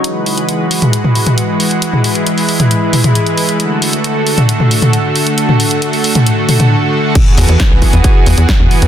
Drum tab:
CC |----------------|----------------|----------------|----------------|
HH |x-oxx-oxx-oxx-ox|x-oxxooxx-oxxxox|x-oxx-oxx-oxx-ox|x-oxxooxx-ox----|
SD |----------------|----------------|----------------|----------------|
T2 |-------o-o-o----|-o-----o--oo----|-------o-o-o----|-o-----o--oo----|
BD |----------------|----------------|----------------|----------------|

CC |x---------------|
HH |x-oxx-oxx-oxx-ox|
SD |----o-------o---|
T2 |o------------o--|
BD |o---o-o-o---o---|